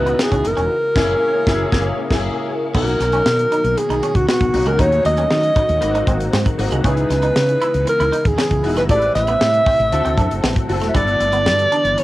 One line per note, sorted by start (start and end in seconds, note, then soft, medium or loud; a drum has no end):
0.00 0.12 C#2 medium
0.00 0.68 C#3 medium
0.00 0.67 E3 medium
0.00 0.68 B3 medium
0.00 0.72 B3 medium
0.00 0.71 D#4 medium
0.00 0.71 E4 medium
0.00 0.66 F#4 medium
0.00 0.71 F#4 medium
0.00 0.24 B4 medium
0.00 0.68 D#5 medium
0.06 0.16 B3 medium
0.06 closed hi-hat medium
0.19 0.49 G#4 loud
0.19 snare loud
0.32 0.41 C#2 medium
0.32 0.41 C#4 medium
0.32 kick medium
0.32 closed hi-hat medium
0.44 0.54 F#1 medium
0.44 2.25 A#4 loud
0.44 muted clean electric guitar stroke medium
0.44 closed hi-hat medium
0.57 0.67 E1 medium
0.57 0.67 C#4 medium
0.57 closed hi-hat soft
0.70 2.73 C#3 medium
0.70 2.73 G#3 medium
0.70 2.73 A#3 medium
0.70 2.72 E4 medium
0.70 2.73 F#4 medium
0.96 1.13 F#1 loud
0.96 1.13 A#3 loud
0.96 1.13 C#4 loud
0.96 1.13 E4 loud
0.96 1.14 G#4 loud
0.96 kick loud
0.96 snare loud
0.96 crash medium
1.46 1.64 F#1 loud
1.46 1.64 A#3 medium
1.46 1.64 C#4 loud
1.46 1.64 E4 loud
1.46 1.64 G#4 loud
1.46 kick loud
1.46 snare loud
1.72 1.90 F#1 loud
1.72 1.89 A#3 loud
1.72 1.90 C#4 loud
1.72 1.90 E4 medium
1.72 1.90 G#4 medium
1.72 kick loud
1.72 snare loud
2.10 2.28 F#1 loud
2.10 2.28 A#3 loud
2.10 2.28 C#4 loud
2.10 2.28 E4 loud
2.10 2.28 G#4 loud
2.10 kick loud
2.10 snare loud
2.10 crash medium
2.74 2.94 B1 loud
2.74 4.78 B2 medium
2.74 6.81 D#3 medium
2.74 6.82 F#3 medium
2.74 3.51 A#3 medium
2.74 4.78 A#3 medium
2.74 2.85 B3 medium
2.74 3.51 C#4 medium
2.74 3.52 D#4 medium
2.74 2.81 E4 medium
2.74 6.81 F#4 medium
2.74 3.79 A#4 loud
2.74 kick medium
2.74 crash loud
2.82 3.55 F#4 medium
2.87 closed hi-hat soft
3.00 3.20 B1 loud
3.00 muted clean electric guitar stroke soft
3.00 snare soft
3.00 closed hi-hat medium
3.12 3.23 C#4 medium
3.12 closed hi-hat medium
3.25 3.45 B2 loud
3.25 snare loud
3.39 closed hi-hat medium
3.52 3.62 D#4 medium
3.52 closed hi-hat medium
3.64 3.74 B1 medium
3.64 closed hi-hat soft
3.77 4.18 G#4 medium
3.77 muted clean electric guitar stroke soft
3.77 closed hi-hat medium
3.89 3.99 B1 medium
3.89 4.00 D#4 medium
3.89 closed hi-hat medium
4.03 4.13 C#4 medium
4.03 closed hi-hat medium
4.15 4.25 C#2 medium
4.15 4.28 F#4 medium
4.15 kick medium
4.15 closed hi-hat medium
4.29 4.38 B3 medium
4.29 4.69 F#4 medium
4.29 snare loud
4.41 4.51 B1 medium
4.41 muted clean electric guitar stroke soft
4.41 kick medium
4.41 closed hi-hat soft
4.53 4.66 B1 medium
4.53 4.73 A#3 medium
4.53 4.73 C#4 medium
4.53 4.73 D#4 medium
4.53 4.73 F#4 medium
4.53 open hi-hat medium
4.66 4.76 C#2 medium
4.66 4.77 G#3 medium
4.66 4.82 A#4 medium
4.66 closed hi-hat medium
4.78 4.99 D#2 loud
4.78 5.56 A3 medium
4.78 5.81 A3 medium
4.78 5.56 C#4 medium
4.78 5.81 C#4 medium
4.78 5.56 D#4 medium
4.78 4.89 D#4 medium
4.78 5.56 F#4 medium
4.78 5.05 C#5 loud
4.78 kick loud
4.78 closed hi-hat medium
4.92 closed hi-hat soft
5.05 5.24 D#2 loud
5.05 6.55 D#5 loud
5.05 muted clean electric guitar stroke soft
5.05 closed hi-hat medium
5.17 5.28 C#4 medium
5.17 closed hi-hat soft
5.30 5.50 D#3 loud
5.30 snare loud
5.43 closed hi-hat medium
5.56 5.66 D#4 medium
5.56 kick loud
5.56 closed hi-hat medium
5.69 5.79 D#2 medium
5.69 closed hi-hat soft
5.80 6.02 G#1 loud
5.80 8.87 G#3 medium
5.80 6.42 A#3 loud
5.80 5.87 B3 medium
5.80 6.84 C4 medium
5.80 6.43 D#4 medium
5.80 6.43 F#4 medium
5.80 muted clean electric guitar stroke soft
5.80 closed hi-hat medium
5.87 6.46 C4 medium
5.95 6.05 D#4 medium
5.95 closed hi-hat medium
6.07 6.27 G#1 medium
6.07 6.18 C4 medium
6.07 kick loud
6.07 closed hi-hat medium
6.20 closed hi-hat medium
6.33 6.43 G#2 medium
6.33 6.44 C4 medium
6.33 snare loud
6.46 muted clean electric guitar stroke soft
6.46 kick medium
6.46 closed hi-hat medium
6.58 6.68 G#1 medium
6.58 6.77 A#3 medium
6.58 6.78 C4 medium
6.58 6.78 D#4 medium
6.58 6.78 F#4 medium
6.58 open hi-hat medium
6.71 6.81 C2 loud
6.71 6.82 G#3 medium
6.71 closed hi-hat medium
6.83 7.04 C#2 loud
6.83 8.87 C#3 medium
6.83 9.89 E3 medium
6.83 7.61 B3 medium
6.83 8.87 B3 medium
6.83 6.95 C#4 medium
6.83 7.61 D#4 medium
6.83 7.61 E4 medium
6.83 7.61 G#4 medium
6.83 7.84 B4 loud
6.83 kick loud
6.83 closed hi-hat medium
6.97 closed hi-hat soft
7.10 7.29 C#2 medium
7.10 muted clean electric guitar stroke soft
7.10 snare soft
7.10 closed hi-hat medium
7.22 7.33 D#4 medium
7.22 closed hi-hat medium
7.35 7.55 C#3 loud
7.35 snare loud
7.49 closed hi-hat medium
7.61 7.71 E4 medium
7.61 closed hi-hat medium
7.74 7.84 C#2 medium
7.74 closed hi-hat soft
7.87 8.29 A#4 medium
7.87 muted clean electric guitar stroke soft
7.87 closed hi-hat medium
8.00 8.09 C#2 medium
8.00 8.10 E4 medium
8.00 closed hi-hat medium
8.12 8.22 D#4 medium
8.12 closed hi-hat medium
8.25 8.35 D#2 medium
8.25 8.39 G#4 medium
8.25 kick loud
8.25 closed hi-hat medium
8.38 8.48 C#4 medium
8.38 8.75 G#4 medium
8.38 snare loud
8.51 8.61 C#2 medium
8.51 muted clean electric guitar stroke soft
8.51 kick medium
8.51 closed hi-hat soft
8.63 8.77 E1 medium
8.63 8.82 B3 medium
8.63 8.83 D#4 medium
8.63 8.83 E4 medium
8.63 8.83 F#4 medium
8.63 open hi-hat medium
8.76 8.89 F#1 medium
8.76 8.87 G#3 medium
8.76 8.83 B4 medium
8.76 snare soft
8.76 closed hi-hat soft
8.88 9.09 A1 loud
8.88 9.91 C3 medium
8.88 9.91 G3 medium
8.88 10.92 A3 medium
8.88 8.99 A3 medium
8.88 9.66 C4 medium
8.88 9.66 E4 medium
8.88 9.66 G4 medium
8.88 8.96 A4 medium
8.88 9.14 D5 loud
8.88 kick loud
8.88 closed hi-hat loud
8.96 9.70 B4 medium
9.02 closed hi-hat soft
9.15 9.35 A1 medium
9.15 10.65 E5 loud
9.15 muted clean electric guitar stroke soft
9.15 snare soft
9.15 closed hi-hat medium
9.27 9.38 B3 medium
9.27 closed hi-hat medium
9.41 9.60 A2 loud
9.41 snare loud
9.54 closed hi-hat medium
9.66 9.76 C4 medium
9.66 kick loud
9.66 open hi-hat medium
9.79 9.89 A1 medium
9.79 closed hi-hat soft
9.92 10.02 D2 loud
9.92 12.04 D3 medium
9.92 10.94 F#3 medium
9.92 10.53 C4 medium
9.92 10.94 C4 medium
9.92 10.54 E4 medium
9.92 10.94 F#4 medium
9.92 10.54 F#4 medium
9.92 10.54 A4 loud
9.92 muted clean electric guitar stroke soft
9.92 closed hi-hat medium
10.05 10.15 D2 medium
10.05 10.15 C4 medium
10.05 closed hi-hat medium
10.18 10.27 F#2 medium
10.18 10.27 D4 medium
10.18 kick medium
10.18 closed hi-hat medium
10.31 10.41 F#1 medium
10.31 closed hi-hat medium
10.43 10.53 A1 medium
10.43 10.53 B3 medium
10.43 snare loud
10.56 muted clean electric guitar stroke soft
10.56 kick medium
10.56 closed hi-hat medium
10.68 10.82 F#1 medium
10.68 10.88 C4 medium
10.68 10.88 E4 medium
10.68 10.88 F#4 medium
10.68 10.88 A4 medium
10.68 open hi-hat medium
10.81 10.91 E1 medium
10.81 10.92 A3 medium
10.81 snare soft
10.81 closed hi-hat medium
10.89 10.98 E5 medium
10.94 11.14 G1 loud
10.94 12.04 E3 medium
10.94 12.04 G3 medium
10.94 11.04 G3 medium
10.94 11.71 B3 medium
10.94 12.04 B3 medium
10.94 11.71 D4 medium
10.94 11.71 E4 medium
10.94 11.72 A4 medium
10.94 12.00 D5 loud
10.94 kick medium
10.94 closed hi-hat medium
11.07 closed hi-hat soft
11.20 11.47 G1 medium
11.20 muted clean electric guitar stroke soft
11.20 closed hi-hat medium
11.32 11.43 B3 medium
11.32 closed hi-hat medium
11.45 11.65 G2 loud
11.45 snare loud
11.59 closed hi-hat soft
11.72 11.82 D4 medium
11.72 closed hi-hat medium
11.84 11.94 G1 medium
11.84 closed hi-hat soft
11.97 12.04 C#5 loud
11.97 muted clean electric guitar stroke soft
11.97 closed hi-hat medium